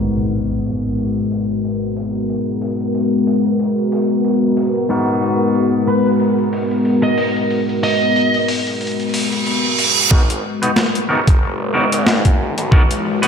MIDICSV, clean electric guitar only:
0, 0, Header, 1, 2, 480
1, 0, Start_track
1, 0, Key_signature, 5, "minor"
1, 0, Tempo, 652174
1, 1684, Time_signature, 4, 2, 24, 8
1, 9772, End_track
2, 0, Start_track
2, 0, Title_t, "Clean electric guitar"
2, 0, Program_c, 0, 27
2, 0, Note_on_c, 0, 44, 70
2, 0, Note_on_c, 0, 59, 56
2, 0, Note_on_c, 0, 63, 56
2, 0, Note_on_c, 0, 66, 60
2, 0, Note_on_c, 0, 70, 75
2, 3581, Note_off_c, 0, 63, 0
2, 3581, Note_off_c, 0, 70, 0
2, 3582, Note_off_c, 0, 44, 0
2, 3582, Note_off_c, 0, 59, 0
2, 3582, Note_off_c, 0, 66, 0
2, 3600, Note_on_c, 0, 44, 70
2, 3606, Note_on_c, 0, 59, 55
2, 3608, Note_on_c, 0, 63, 58
2, 3611, Note_on_c, 0, 66, 61
2, 3614, Note_on_c, 0, 70, 72
2, 7419, Note_off_c, 0, 44, 0
2, 7420, Note_off_c, 0, 59, 0
2, 7420, Note_off_c, 0, 63, 0
2, 7420, Note_off_c, 0, 66, 0
2, 7420, Note_off_c, 0, 70, 0
2, 7437, Note_on_c, 0, 59, 74
2, 7441, Note_on_c, 0, 63, 61
2, 7444, Note_on_c, 0, 66, 62
2, 7450, Note_on_c, 0, 70, 72
2, 7512, Note_off_c, 0, 59, 0
2, 7512, Note_off_c, 0, 63, 0
2, 7512, Note_off_c, 0, 66, 0
2, 7512, Note_off_c, 0, 70, 0
2, 7816, Note_on_c, 0, 71, 81
2, 7821, Note_on_c, 0, 66, 64
2, 7824, Note_on_c, 0, 63, 65
2, 7829, Note_on_c, 0, 59, 68
2, 7872, Note_off_c, 0, 63, 0
2, 7873, Note_off_c, 0, 59, 0
2, 7873, Note_off_c, 0, 71, 0
2, 7874, Note_off_c, 0, 66, 0
2, 8161, Note_on_c, 0, 70, 97
2, 8165, Note_on_c, 0, 66, 80
2, 8169, Note_on_c, 0, 63, 80
2, 8171, Note_on_c, 0, 59, 82
2, 8233, Note_off_c, 0, 70, 0
2, 8234, Note_off_c, 0, 59, 0
2, 8234, Note_off_c, 0, 63, 0
2, 8234, Note_off_c, 0, 66, 0
2, 8639, Note_on_c, 0, 70, 83
2, 8643, Note_on_c, 0, 66, 67
2, 8646, Note_on_c, 0, 63, 64
2, 8650, Note_on_c, 0, 59, 60
2, 8713, Note_off_c, 0, 59, 0
2, 8713, Note_off_c, 0, 63, 0
2, 8713, Note_off_c, 0, 66, 0
2, 8713, Note_off_c, 0, 70, 0
2, 9358, Note_on_c, 0, 59, 79
2, 9361, Note_on_c, 0, 63, 64
2, 9366, Note_on_c, 0, 66, 67
2, 9368, Note_on_c, 0, 70, 69
2, 9432, Note_off_c, 0, 59, 0
2, 9432, Note_off_c, 0, 63, 0
2, 9433, Note_off_c, 0, 66, 0
2, 9433, Note_off_c, 0, 70, 0
2, 9732, Note_on_c, 0, 71, 86
2, 9735, Note_on_c, 0, 66, 73
2, 9741, Note_on_c, 0, 63, 67
2, 9744, Note_on_c, 0, 59, 72
2, 9772, Note_off_c, 0, 59, 0
2, 9772, Note_off_c, 0, 63, 0
2, 9772, Note_off_c, 0, 66, 0
2, 9772, Note_off_c, 0, 71, 0
2, 9772, End_track
0, 0, End_of_file